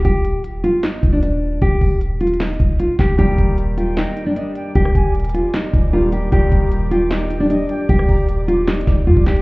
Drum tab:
HH |x-----------x-----------x-----------x-----------x-----------x-----------x-----------------------|x-----------o-----------x-----------x---x---x---x---x---x---x-----------x-----------------------|x-----------x-----------x-----------x-----------x-----------x-----------x-----------x-----------|x-----------x-----------x--x--x--x--x-----------x-----------x-----------------------x-----------|
CP |------------------------------------------------x-----------------------------------------------|------------------------------------------------x-----------------------------------x-----------|------------------------------------------------x-----------------------------------------------|------------------------------------------------x-----------------------------------------------|
SD |------------------------------------------------o-----------------------------------------------|------------------------------------------------o-----------------------------------o-----------|------------------------------------------------o-----------------------------------------------|------r-----------------------------------------o-----------------------------------------------|
BD |o-----------------------------------------------------------o-----------------------------------|o-----------o-----------------------------------------------o-----------------------o-----------|o-----------o-----------------------------------------------------------------------------------|o-----------o-----------------------------------------------o-----------------------------------|

HH |x-----------x-----------x-----------x-----------x-----------x-----------x-----------x-----------|x-----------o-----------x-----------x-----------x---x---x---x-----------------------x-----x-----|
CP |------------------------------------------------x-----------------------------------------------|------------------------------------------------x-----------------------------------x-----------|
SD |------------------------------------------------o-----------------------------------------------|------r-----------------------------------------o-----------o-----------------------o-----------|
BD |o-----------o-----------------------------------------------------------------------------------|o-----------o-----------------------------------------------o-----------------o-----------------|